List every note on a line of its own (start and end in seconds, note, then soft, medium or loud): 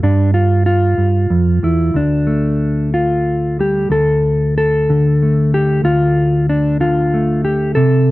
0.03 0.97 G2 medium
0.03 0.34 D4 medium
0.34 0.65 F4 medium
0.66 1.95 F4 medium
0.98 1.30 G2 medium
1.30 1.62 F2 medium
1.63 1.94 E2 medium
1.63 1.95 E4 medium
1.94 3.88 D2 medium
1.94 2.93 D4 medium
2.27 5.21 A3 soft
2.94 3.59 F4 medium
3.59 3.92 G3 soft
3.59 3.91 G4 medium
3.90 5.82 D2 medium
3.90 4.56 A4 loud
4.58 5.53 A4 loud
4.90 6.79 D3 medium
5.22 7.13 A3 soft
5.54 5.84 G4 loud
5.84 7.74 D2 medium
5.84 6.49 F4 loud
6.49 6.80 D4 medium
6.80 7.75 D3 medium
6.80 7.44 F4 medium
7.14 7.76 A3 soft
7.45 7.75 G4 medium
7.75 8.11 C3 medium
7.75 8.11 A4 loud